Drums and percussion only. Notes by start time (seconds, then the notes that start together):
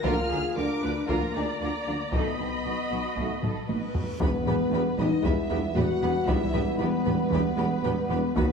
0.04 taiko
1.08 taiko
2.12 taiko
3.17 taiko
3.43 taiko low-mid
3.69 taiko high
3.95 taiko low
4.21 taiko
4.46 taiko low-mid
4.99 taiko low-mid
5.24 taiko
5.76 taiko low-mid
6.28 taiko
6.54 taiko low-mid
7.06 taiko low-mid
7.32 taiko
7.84 taiko low-mid
8.36 taiko